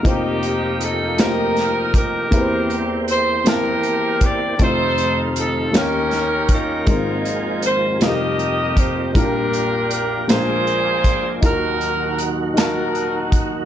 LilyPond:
<<
  \new Staff \with { instrumentName = "Saxophone section" } { \time 6/8 \key f \mixolydian \tempo 4. = 53 << { g'4 a'8 bes'4 bes'8~ | bes'8 r8 c''8 bes'4 d''8 | c''4 a'8 bes'4 bes'8~ | bes'8 r8 c''8 ees''4 c''8 |
bes'4 bes'8 c''4. | bes'4 r8 bes'4 r8 | } \\ { <bes ees'>4. <ees' g'>4 g'8~ | g'4 r8 g'4. | <ees' a'>4. <des' g'>4 <ees' f'>8~ | <ees' f'>4 r8 <g' bes'>4. |
<d' g'>4. <f' aes'>4. | <ees' ges'>4. <ees' ges'>4. | } >> }
  \new Staff \with { instrumentName = "Upright piano" } { \time 6/8 \key f \mixolydian <bes ees' f' g' c''>4. <a bes ees' f' g' c''>4. | <bes c' e' g' ces'' c''>4. <bes c' e' g' a''>4. | <a c' ees' f' c''>4. <bes des' ees' g' des''>4. | <aes bes c' ees' f' bes'>4. <g c' ees' f' a' bes'>4. |
<g bes d' f' bes'>4. <aes bes d' f' bes'>4. | <ees' f' ges' bes'>4. <ees' ges' a''>4. | }
  \new Staff \with { instrumentName = "Upright piano" } { \clef bass \time 6/8 \key f \mixolydian <f,, f,>2. | <e, e>2. | <f,, f,>4. <ees, ees>4. | <aes,, aes,>4. <f,, f,>4. |
<bes,, bes,>4. <bes,, bes,>4. | <ees, ees>2. | }
  \new Staff \with { instrumentName = "Tonewheel organ" } { \time 6/8 \key f \mixolydian <f bes ees' g'>2. | <e bes c' ges' g'>2. | <ees a c' f'>4. <ees bes des' g'>4. | <f bes c' aes'>4. <f bes ees' f' g'>4. |
<f bes d' g'>4. <f bes d' aes'>4. | <ees ges bes f' ges'>2. | }
  \new DrumStaff \with { instrumentName = "Drums" } \drummode { \time 6/8 <hh bd>8 hh8 hh8 <hh sn>8 <hh sn>8 <hh bd>8 | <hh bd>8 hh8 hh8 <hh sn>8 hh8 <hh bd>8 | <hh bd>8 hh8 hh8 <hh sn>8 <hh sn>8 <hh bd>8 | <hh bd>8 hh8 hh8 <hh sn>8 hh8 <hh bd>8 |
<hh bd>8 hh8 hh8 <hh sn>8 hh8 <hh bd>8 | <hh bd>8 hh8 hh8 <hh sn>8 hh8 <hh bd>8 | }
>>